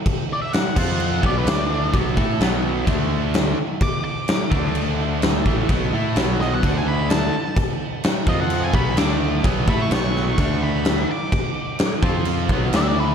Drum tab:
CC |x-xxx-x-|x-x-x-x-|x-x-x-x-|x-x-x-x-|
SD |--o---o-|--o---o-|--o---o-|--oo--o-|
BD |o--o-o--|oo--o---|o--o---o|o---o---|

CC |x-x-x-x-|x-x-x-x-|x-x-x-x-|
SD |--o---o-|--oo--o-|--o---o-|
BD |o--o-o--|oo--o---|o--o-o--|